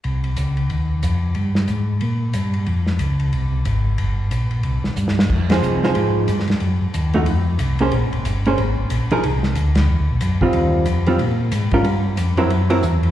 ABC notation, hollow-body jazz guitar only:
X:1
M:4/4
L:1/8
Q:"Swing" 1/4=183
K:Cphr
V:1 name="Hollow-body jazz guitar"
z8 | z8 | z8 | z8 |
z [F,EAc]2 [F,EAc]3 z2 | z3 [F,=A,E_G] z3 [B,D_Ac] | z3 [B,DAc] z3 [F,EAB] | z6 z [E,G,CF]- |
[E,G,CF]2 z [E,G,CF] z3 [G,DFB] | z3 [_G,C=EB] z [G,C_FB] z2 |]